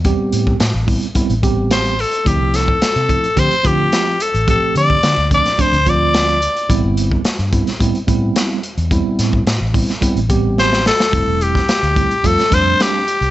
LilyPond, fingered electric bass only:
\new Staff \with { instrumentName = "Fingered electric bass" } { \clef bass \time 4/4 \key a \minor \tempo 4 = 108 e,16 r16 a,8 a,16 a,,8 r8 a,,4.~ a,,16 | d,16 c,8. r16 c8 r16 d16 r16 d8 r8. a,,16~ | a,,16 r16 d8 d16 d,8 r8 d,4.~ d,16 | a,,16 g,,8. r16 g,8 r16 a,16 r16 a,8 r8. e,16~ |
e,16 r16 a,8 a,16 a,,8 r8 a,,4.~ a,,16 | f,,16 e,,8. r16 d,8 r16 f,16 r16 f,8 r8. c,16 | }